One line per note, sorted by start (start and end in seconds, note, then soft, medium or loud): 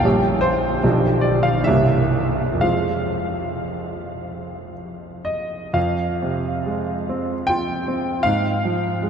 0.00 0.78 A#0 medium
0.04 0.81 A#1 medium
0.04 0.79 G3 soft
0.04 0.79 C#4 soft
0.04 0.80 G4 soft
0.41 1.23 C5 medium
0.83 1.64 B0 medium
0.83 1.64 B1 medium
0.83 1.63 F3 soft
0.83 1.63 D4 soft
0.83 1.63 G4 soft
1.21 1.43 D5 medium
1.43 1.65 F5 medium
1.64 2.61 C1 medium
1.64 2.61 C2 medium
1.64 2.60 A#3 soft
1.64 2.60 C#4 soft
1.64 2.62 E5 medium
1.68 2.60 G4 soft
2.53 5.67 F2 soft
2.60 5.71 G#3 soft
2.60 5.71 C4 soft
2.60 5.72 F4 soft
2.60 4.73 F5 medium
5.25 5.75 D#5 medium
5.73 8.21 F2 soft
5.73 7.48 F5 medium
6.23 6.92 C3 soft
6.66 7.33 G#3 soft
7.09 7.73 C4 soft
7.47 8.11 F4 soft
7.47 8.25 G5 medium
7.88 8.27 C4 soft
8.23 9.10 G#2 soft
8.23 9.10 F5 medium
8.65 9.10 F3 soft
9.03 9.10 G#3 soft